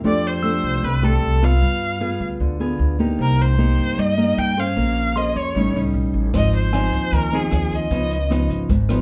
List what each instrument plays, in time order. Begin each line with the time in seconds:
0.04 upright bass F2, nylon-string guitar F3 A3 D4 G4, erhu D5
0.27 erhu C5
0.43 nylon-string guitar A3 D4 G4, tine electric piano E6
0.63 upright bass C2
0.83 upright bass C2, nylon-string guitar C3, erhu B4
1.02 nylon-string guitar A3 D4 G4, erhu A4
1.22 upright bass C2
1.42 nylon-string guitar B3 F4, erhu F5
1.61 upright bass G2, nylon-string guitar G3
2.00 nylon-string guitar B3 F4 G#4
2.20 upright bass D2
2.40 upright bass D2, nylon-string guitar D3
2.60 nylon-string guitar B3 F4 G#4
2.79 upright bass D2
2.99 nylon-string guitar A#3 D#4 G4
3.19 upright bass C2, nylon-string guitar C3, erhu A#4
3.42 erhu C5
3.58 nylon-string guitar A#3 D#4 G4
3.78 upright bass G2
3.97 upright bass G2, nylon-string guitar G3, erhu D#5
4.17 nylon-string guitar A#3 D#4 G4
4.38 upright bass G2, erhu G5
4.57 nylon-string guitar C#4 G#4 C5, erhu F5
4.76 upright bass A#1, nylon-string guitar A#3
5.16 nylon-string guitar C#4 G#4 C5, erhu D#5, tine electric piano C6
5.36 upright bass F2, erhu C#5
5.55 upright bass A1, nylon-string guitar A2 G3 C#4 D#4
5.75 upright bass C#2, nylon-string guitar G3 C#4 D#4
5.94 upright bass B1
6.14 upright bass A1
6.34 upright bass G#1, nylon-string guitar G#2 F3 C4 D#4, erhu D#5, kick, cross-stick, closed hi-hat
6.53 erhu C5, closed hi-hat
6.73 nylon-string guitar F3 C4 D#4, tine electric piano G#5, cross-stick, closed hi-hat
6.93 upright bass D#2, kick, closed hi-hat
7.12 upright bass D#2, nylon-string guitar D#3, erhu A#4, kick, closed hi-hat
7.32 nylon-string guitar F3 C4 D#4, erhu G#4, closed hi-hat
7.51 upright bass D#2, cross-stick, closed hi-hat
7.71 erhu D#5, kick, closed hi-hat
7.91 upright bass C#2, nylon-string guitar C#3 F3 B3 D#4, kick, closed hi-hat
8.11 closed hi-hat
8.30 nylon-string guitar F3 B3 D#4, cross-stick, closed hi-hat
8.50 upright bass G#1, kick, closed hi-hat
8.69 upright bass G#1, nylon-string guitar G#2, kick, closed hi-hat
8.89 nylon-string guitar F3 B3 D#4, cross-stick, closed hi-hat